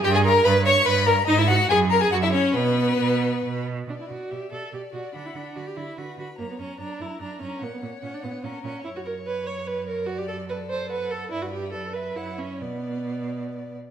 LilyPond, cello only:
\new Staff \with { instrumentName = "Cello" } { \clef bass \time 3/4 \key fis \mixolydian \tempo 4 = 144 g,4 g,4 g,4 | gis,4 fis,4 fis,4 | b,4 b,4 b,4 | \key b \minor b,8 b,8 b,8 b,8 b,8 b,8 |
d8 d8 d8 d8 d8 d8 | fis,8 fis,8 fis,8 fis,8 fis,8 fis,8 | ais,8 ais,8 ais,8 ais,8 ais,8 ais,8 | fis,2.~ |
fis,2. | g,4 fis,4 fis,4 | b,2~ b,8 r8 | }